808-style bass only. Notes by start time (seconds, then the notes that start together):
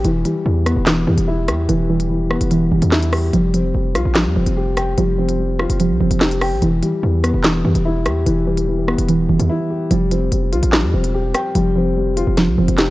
0.05 E1
0.46 E2
0.76 E1
1.07 E2
1.18 E1
1.48 E2
1.69 E1
2.41 E1
2.72 E1
2.82 E2
3.33 F1
3.74 F1
3.95 C2
4.05 A1
4.26 F2
4.36 E1
4.46 F1
4.98 F1
5.70 F1
5.90 C2
6.00 F1
6.11 F1
6.52 A1
6.62 E1
7.03 E2
7.34 E1
7.65 E2
7.75 E1
8.06 E2
8.26 E1
8.98 E1
9.29 E1
9.39 E2
9.91 F1
10.32 F1
10.52 C2
10.63 A1
10.83 F2
10.93 E1
11.55 F1
12.27 F1
12.48 C2
12.58 F1
12.68 F1